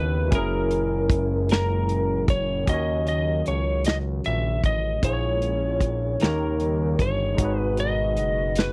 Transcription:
Already playing: analog synth bass D#2, tine electric piano C#3 B3 C#4 E4 B4, analog synth pad C#3 B3 E4, lead electric guitar B4
0.28 tine electric piano F#3 C#4, closed hi-hat
0.32 analog synth bass F#1, analog synth pad A#2 G#3, tine electric piano E4 G#4, lead electric guitar A#4, kick
0.38 tine electric piano A#4
0.71 closed hi-hat
1.10 kick, closed hi-hat
1.49 lead electric guitar A#4, snare, closed hi-hat
1.89 closed hi-hat
2.28 lead electric guitar C#5, kick, closed hi-hat
2.63 tine electric piano D#3 C#4
2.67 analog synth bass D#2, analog synth pad C#3 D#3 F#3, tine electric piano F#4 A#4, lead electric guitar D#5, kick, closed hi-hat
2.74 tine electric piano C#5
3.07 lead electric guitar D#5, closed hi-hat
3.46 analog synth bass C#2, lead electric guitar C#5, closed hi-hat
3.85 lead electric guitar D#5, snare, closed hi-hat
4.24 analog synth bass A#1, lead electric guitar E5, closed hi-hat
4.64 analog synth bass A1, lead electric guitar D#5, kick, closed hi-hat
5.02 analog synth bass A#1, tine electric piano A#2 A#3 E4, analog synth pad A#2 G#3 C#4, lead electric guitar C#5, kick, closed hi-hat
5.06 tine electric piano G#4 C5
5.13 tine electric piano C#5
5.42 closed hi-hat
5.80 kick, closed hi-hat
6.20 analog synth bass D#2, analog synth pad C#3 G3 D#4, tine electric piano D#3 D#4 G4 A#4, lead electric guitar A#4, snare, closed hi-hat
6.25 tine electric piano C#5
6.60 closed hi-hat
6.99 analog synth bass G1, lead electric guitar C#5, kick, closed hi-hat
7.34 tine electric piano G#3 D#4, analog synth pad G#3 F#4
7.38 analog synth bass G#1, analog synth pad B2, tine electric piano F#4 G#4, kick, closed hi-hat
7.45 tine electric piano B4
7.60 lead electric guitar B4
7.77 lead electric guitar D#5, closed hi-hat
8.17 analog synth bass F#1, closed hi-hat
8.55 lead electric guitar B4, snare, closed hi-hat

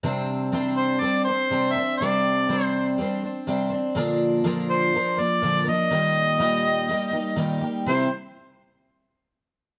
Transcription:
0.03 twelve-string acoustic guitar C3 G3 C4 D4 C5
0.52 twelve-string acoustic guitar C3 G3 C4 D4 C5
0.76 harmonica C5
1.00 twelve-string acoustic guitar G3 C4 D4, harmonica D5
1.04 twelve-string acoustic guitar C5
1.24 harmonica C5, twelve-string acoustic guitar C5
1.29 twelve-string acoustic guitar C4 D4
1.50 twelve-string acoustic guitar C3 G3 C4 D4 C5
1.72 twelve-string acoustic guitar C5, harmonica E5
1.78 twelve-string acoustic guitar C4 D4
1.97 twelve-string acoustic guitar C3, harmonica D5
2.01 twelve-string acoustic guitar G3 C4 D4 C5
2.48 twelve-string acoustic guitar C3 G3 C4 D4 C5
2.64 harmonica C5
2.98 twelve-string acoustic guitar G3 C4 D4 C5
3.23 twelve-string acoustic guitar C4 D4 C5
3.47 twelve-string acoustic guitar C3 G3 C4 D4 C5
3.70 twelve-string acoustic guitar C4 D4 C5
3.95 twelve-string acoustic guitar A#2 D3 F3 A#3 D4 A#4
4.44 twelve-string acoustic guitar A#2 D3 F3 A#3 D4 A#4
4.70 harmonica C5
4.93 twelve-string acoustic guitar F3 A#3 D4 A#4
5.17 twelve-string acoustic guitar F3 A#3 D4 A#4, harmonica D5
5.42 twelve-string acoustic guitar A#2 D3 F3 A#3 D4 A#4
5.65 twelve-string acoustic guitar F3 A#3 D4 A#4
5.69 harmonica D#5
5.90 twelve-string acoustic guitar A#2 D#3 G3 A#3 D#4 G4
6.38 twelve-string acoustic guitar A#2 D#3 G3 A#3 D#4 G4
6.89 twelve-string acoustic guitar G3 A#3 D#4 G4
7.11 twelve-string acoustic guitar G3 A#3 D#4 G4
7.36 twelve-string acoustic guitar A#2 D#3 G3 A#3 D#4 G4
7.61 twelve-string acoustic guitar G3 A#3 D#4 G4
7.86 twelve-string acoustic guitar C3 G3 C4 E4 G4, harmonica C5

